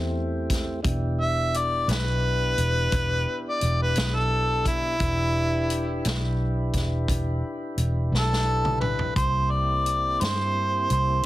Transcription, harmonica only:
1.21 1.59 E5 medium
1.57 1.91 D5 medium
1.90 3.41 B4 medium
3.49 3.80 D5 medium
3.82 4.17 B4 medium
4.15 4.65 A4 medium
4.68 6.02 E4 medium
8.15 8.80 A4 medium
8.81 9.15 B4 medium
9.16 9.52 C5 medium
9.50 10.22 D5 medium
10.21 10.89 C5 medium
10.92 11.25 C5 medium

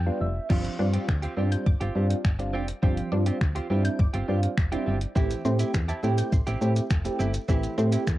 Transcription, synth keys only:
0.00 0.19 G5 medium
0.06 0.27 G3 medium
0.06 0.28 B3 medium
0.06 0.28 D4 medium
0.06 0.28 F4 medium
0.21 0.48 E5 medium
0.50 0.64 G3 medium
0.50 0.64 C4 medium
0.50 0.64 D4 medium
0.50 0.64 F4 medium
0.79 1.08 G3 medium
0.79 1.08 C4 medium
0.79 1.08 D4 medium
0.79 1.08 F4 medium
1.37 1.66 G3 medium
1.37 1.66 C4 medium
1.37 1.66 D4 medium
1.37 1.66 F4 medium
1.95 2.17 G3 medium
1.95 2.17 C4 medium
1.95 2.17 D4 medium
1.95 2.17 F4 medium
2.39 2.60 G3 medium
2.39 2.61 C4 medium
2.39 2.61 D4 medium
2.39 2.61 F4 medium
2.83 2.97 G3 medium
2.83 2.97 C4 medium
2.83 2.97 D4 medium
2.83 2.97 F4 medium
3.12 3.40 G3 medium
3.12 3.40 C4 medium
3.12 3.41 D4 medium
3.12 3.41 F4 medium
3.70 3.99 G3 medium
3.70 3.99 C4 medium
3.70 3.99 D4 medium
3.70 3.99 E4 medium
4.28 4.50 G3 medium
4.28 4.50 C4 medium
4.28 4.50 D4 medium
4.28 4.50 F4 medium
4.72 4.93 G3 medium
4.72 4.94 C4 medium
4.72 4.94 D4 medium
4.72 4.94 E4 medium
5.16 5.30 A3 medium
5.16 5.30 C4 medium
5.16 5.30 E4 medium
5.16 5.30 G4 medium
5.45 5.73 A3 medium
5.45 5.73 C4 medium
5.45 5.74 E4 medium
5.45 5.74 G4 medium
6.03 6.32 A3 medium
6.03 6.32 C4 medium
6.03 6.32 E4 medium
6.03 6.32 G4 loud
6.61 6.83 A3 medium
6.61 6.83 C4 medium
6.61 6.83 E4 medium
6.61 6.83 G4 medium
7.05 7.26 A3 medium
7.05 7.27 C4 medium
7.05 7.27 E4 medium
7.05 7.27 G4 medium
7.49 7.63 A3 medium
7.49 7.63 C4 medium
7.49 7.63 E4 medium
7.49 7.63 G4 loud
7.78 8.06 A3 medium
7.78 8.06 C4 medium
7.78 8.07 E4 medium
7.78 8.07 G4 loud

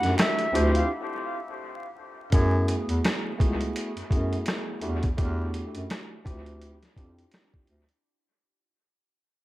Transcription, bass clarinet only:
0.04 0.15 F#2 medium
0.54 0.82 D2 loud
2.33 2.78 F#2 loud
2.89 3.01 E2 medium
3.40 3.68 C#2 medium
3.96 4.02 F#2 soft
4.11 4.39 F#2 loud
4.82 5.11 E2 loud
5.18 5.63 E2 loud
5.75 5.87 F#2 medium
6.26 6.82 D2 loud
6.96 7.25 F2 medium
7.69 7.85 D2 medium

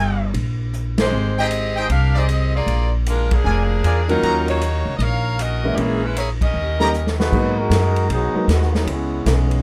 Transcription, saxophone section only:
1.00 1.35 G#3 medium
1.00 1.36 D#4 medium
1.00 1.35 G4 medium
1.00 1.35 C5 medium
1.40 1.88 C4 medium
1.40 1.88 G4 medium
1.40 1.87 G#4 medium
1.40 1.87 D#5 medium
1.91 2.15 D4 medium
1.91 2.16 G4 medium
1.91 2.15 A#4 medium
1.91 2.16 F5 medium
2.17 2.55 C4 medium
2.17 2.55 G4 medium
2.17 2.55 G#4 medium
2.17 2.55 D#5 medium
2.56 2.91 A#3 medium
2.56 2.91 F4 medium
2.56 2.91 G#4 medium
2.56 2.91 D5 loud
3.09 3.31 G#3 medium
3.09 3.31 D4 medium
3.09 3.31 F4 medium
3.09 3.31 A#4 medium
3.33 4.10 F3 medium
3.33 4.10 A#3 medium
3.33 4.10 D4 medium
3.33 4.10 G#4 medium
4.10 4.46 F#3 medium
4.10 4.46 C#4 medium
4.10 4.46 D#4 medium
4.10 4.46 A#4 medium
4.49 4.92 A#3 medium
4.49 4.92 D#4 medium
4.49 4.92 F#4 medium
4.49 4.92 C#5 medium
4.97 5.01 D#5 medium
5.02 5.40 D#4 medium
5.02 5.39 A#4 medium
5.02 5.40 C#5 medium
5.02 5.40 F5 loud
5.40 5.75 C#4 medium
5.40 5.75 F#4 medium
5.40 5.75 A#4 medium
5.40 5.75 D#5 medium
5.76 5.78 G4 medium
5.80 6.04 E3 medium
5.80 6.04 A#3 medium
5.80 6.04 C#4 medium
5.80 6.04 G#4 medium
6.05 6.18 G#3 medium
6.05 6.18 C#4 medium
6.05 6.17 E4 medium
6.05 6.17 B4 medium
6.18 6.29 A#3 medium
6.18 6.29 E4 medium
6.18 6.29 G#4 medium
6.18 6.29 C#5 medium
6.43 7.16 C#4 medium
6.43 7.16 G4 medium
6.43 7.16 A#4 medium
6.43 7.16 D#5 medium

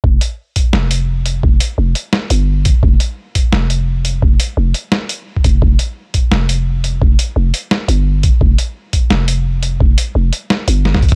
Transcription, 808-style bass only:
0.04 0.20 F1 medium
0.73 1.42 F1 medium
1.43 1.60 F1 medium
1.78 1.94 F1 medium
2.30 2.74 G1 loud
2.83 2.99 F1 loud
3.52 4.21 F1 medium
4.22 4.39 F1 loud
4.57 4.73 F1 medium
5.44 5.61 F1 medium
5.62 5.78 F1 loud
6.31 7.00 F1 medium
7.01 7.18 F1 loud
7.36 7.52 F1 medium
7.88 8.32 G1 loud
8.41 8.57 F1 loud
9.11 9.80 F1 medium
9.80 9.97 F1 loud
10.15 10.32 F1 medium
10.68 11.13 G1 loud
11.12 11.15 C2 loud

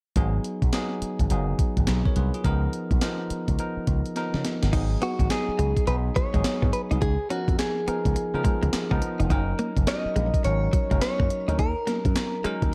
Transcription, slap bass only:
0.16 0.38 G#1 loud
0.62 0.70 B1 medium
1.02 muted slap bass stroke soft
1.20 1.28 G#1 medium
1.31 1.52 F#1 medium
1.77 1.85 G#1 medium
1.88 2.01 B1 medium
2.16 2.30 C2 medium
2.45 2.66 C#2 medium
2.91 2.99 B1 medium
3.30 muted slap bass stroke soft
3.48 3.56 C#2 medium
3.77 muted slap bass stroke soft
3.87 4.01 C#2 medium
4.34 4.42 C#3 loud
4.63 4.71 G1 medium
4.73 4.95 G#1 loud
5.19 5.28 G#1 medium
5.48 muted slap bass stroke soft
5.59 5.73 C#2 medium
5.87 6.09 B1 loud
6.34 6.42 G#1 medium
6.63 6.71 G#2 medium
6.91 6.99 C2 medium
7.02 7.15 C#2 loud
7.48 7.56 F2 medium
7.88 muted slap bass stroke soft
8.05 8.13 C#2 medium
8.16 muted slap bass stroke soft
8.34 8.42 C#3 medium
8.63 8.71 C#2 medium
8.73 muted slap bass stroke soft
8.91 8.99 C#2 medium
9.20 9.28 F1 medium
9.30 9.52 F#1 loud
9.77 9.85 F#1 medium
10.05 muted slap bass stroke soft
10.16 10.30 A#1 medium
10.45 10.67 G#1 loud
10.91 10.99 F#1 medium
11.20 11.28 F#2 medium
11.48 11.56 D2 medium
11.59 11.73 D#2 loud
12.05 12.13 F#2 medium
12.44 muted slap bass stroke soft
12.62 12.70 D#2 medium

